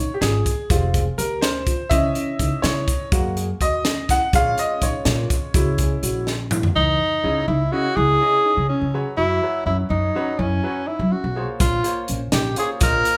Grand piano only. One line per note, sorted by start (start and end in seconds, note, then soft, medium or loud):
0.00 0.11 C#5 medium
0.14 0.22 G4 medium
0.21 0.67 G#4 medium
0.69 1.02 G#3 soft
0.69 1.02 C4 soft
0.69 1.03 F4 medium
1.18 1.43 A#4 medium
1.41 1.92 C5 medium
1.90 3.08 E3 soft
1.90 3.08 C#4 soft
1.90 3.08 D#5 medium
1.90 2.65 E5 medium
2.62 3.08 C#5 medium
3.12 3.44 G#3 soft
3.12 3.45 A#3 soft
3.12 3.45 F#4 medium
3.62 4.11 D#5 medium
4.11 4.35 F#5 loud
4.33 5.51 G#3 soft
4.33 5.51 C#4 soft
4.33 5.51 F4 medium
4.33 4.60 F5 loud
4.59 4.84 D#5 medium
4.83 5.51 C#5 medium
5.54 6.23 G#3 soft
5.54 6.24 C#4 soft
5.54 6.24 E4 medium
7.23 7.41 C#3 medium
7.23 7.41 C#4 medium
7.23 7.41 E4 medium
7.23 7.42 D#5 medium
7.71 7.89 C#3 medium
7.71 7.89 C#4 medium
7.71 7.90 E4 medium
7.71 7.90 D#5 medium
8.21 8.89 C#3 medium
8.21 8.89 C#4 medium
8.21 8.89 E4 medium
8.21 8.90 D#5 medium
8.94 9.40 F#3 medium
8.94 9.41 F#4 medium
8.94 9.42 B4 medium
8.94 9.42 C#5 medium
9.42 10.10 F#3 medium
9.42 10.11 F#4 medium
9.42 10.11 B4 soft
9.42 10.11 C#5 medium
10.15 10.32 F#3 medium
10.15 10.32 F#4 medium
10.15 10.33 B4 medium
10.15 10.33 C#5 medium
10.63 10.80 F#3 medium
10.63 10.80 F#4 medium
10.63 10.81 B4 medium
10.63 10.81 C#5 medium
11.36 11.82 A#3 medium
11.36 11.82 F4 medium
11.36 11.83 C5 medium
11.36 11.83 C#5 medium
11.83 12.18 A#3 medium
11.83 12.18 F4 medium
11.83 12.19 C5 medium
11.83 12.19 C#5 medium
12.56 12.78 A#3 medium
12.56 12.79 F4 medium
12.56 12.79 C5 medium
12.56 12.92 C#5 medium
12.80 13.15 A#3 medium
12.80 13.15 F4 medium
12.80 13.15 C5 medium
12.80 13.16 D#5 medium